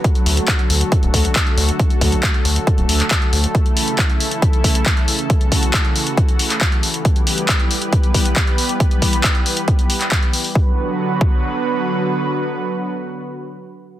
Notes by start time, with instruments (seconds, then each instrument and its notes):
Already playing: analog synth pad F#3 F#4
0.04 analog synth pad D3 A3 A4, kick, closed hi-hat
0.15 closed hi-hat
0.26 analog synth bass D2, open hi-hat
0.37 closed hi-hat
0.48 kick, clap, closed hi-hat
0.59 closed hi-hat
0.70 analog synth bass D2, open hi-hat
0.81 closed hi-hat
0.92 kick, closed hi-hat
1.03 analog synth bass D1, closed hi-hat
1.14 analog synth bass D2, kick, open hi-hat
1.25 closed hi-hat
1.36 kick, clap, closed hi-hat
1.47 closed hi-hat
1.57 analog synth bass D2, open hi-hat
1.69 closed hi-hat
1.79 kick, closed hi-hat
1.90 closed hi-hat
2.01 analog synth bass D2, kick, open hi-hat
2.12 closed hi-hat
2.23 kick, clap, closed hi-hat
2.34 closed hi-hat
2.45 analog synth bass D2, open hi-hat
2.56 closed hi-hat
2.67 kick, closed hi-hat
2.78 analog synth bass D1, closed hi-hat
2.89 analog synth bass D2, open hi-hat
3.00 clap, closed hi-hat
3.11 kick, clap, closed hi-hat
3.22 closed hi-hat
3.33 analog synth bass D2, open hi-hat
3.44 closed hi-hat
3.55 analog synth pad C#3 E3 E4, kick, closed hi-hat
3.66 closed hi-hat
3.77 open hi-hat
3.88 closed hi-hat
3.99 kick, clap, closed hi-hat
4.10 closed hi-hat
4.20 open hi-hat
4.31 closed hi-hat
4.42 kick, closed hi-hat
4.53 closed hi-hat
4.64 kick, open hi-hat
4.75 closed hi-hat
4.86 kick, clap, closed hi-hat
4.97 closed hi-hat
5.08 open hi-hat
5.19 closed hi-hat
5.30 analog synth pad F#4, kick, closed hi-hat
5.41 closed hi-hat
5.52 kick, open hi-hat
5.63 closed hi-hat
5.74 kick, clap, closed hi-hat
5.85 closed hi-hat
5.96 open hi-hat
6.07 closed hi-hat
6.17 kick, closed hi-hat
6.29 closed hi-hat
6.39 open hi-hat
6.50 clap, closed hi-hat
6.61 kick, clap, closed hi-hat
6.72 closed hi-hat
6.83 open hi-hat
6.94 closed hi-hat
7.05 analog synth pad G3 B3 G4 B4, kick, closed hi-hat
7.16 closed hi-hat
7.27 open hi-hat
7.38 closed hi-hat
7.49 kick, clap, closed hi-hat
7.60 closed hi-hat
7.71 open hi-hat
7.82 closed hi-hat
7.93 kick, closed hi-hat
8.03 closed hi-hat
8.14 kick, open hi-hat
8.25 closed hi-hat
8.36 kick, clap, closed hi-hat
8.47 closed hi-hat
8.58 open hi-hat
8.69 closed hi-hat
8.80 kick, closed hi-hat
8.91 closed hi-hat
9.02 kick, open hi-hat
9.13 closed hi-hat
9.24 kick, clap, closed hi-hat
9.35 closed hi-hat
9.46 open hi-hat
9.57 closed hi-hat
9.68 kick, closed hi-hat
9.79 closed hi-hat
9.90 open hi-hat
10.01 clap, closed hi-hat
10.12 kick, clap, closed hi-hat
10.23 closed hi-hat
10.33 open hi-hat
10.44 open hi-hat
10.55 analog synth pad D3 F#3 B3 F#4 B4, kick
11.21 kick